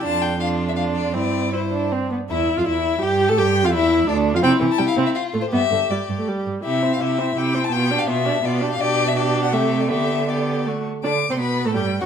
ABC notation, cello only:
X:1
M:3/4
L:1/16
Q:1/4=166
K:Gmix
V:1 name="Cello" clef=bass
F,,12 | G,,8- G,,2 z2 | E,,3 F,, E,,4 G,,3 A,, | G,,3 F,, E,,4 D,,3 F,, |
C,2 C,2 C,2 C,2 z2 A,,2 | G,,2 G,,2 G,,2 G,,2 z2 G,,2 | C,4 C,4 C,4 | B,,4 B,,4 B,,4 |
[K:G] B,,8 C,4 | D,8- D,2 z2 | D,3 C, B,,3 A,, G,,3 F,, |]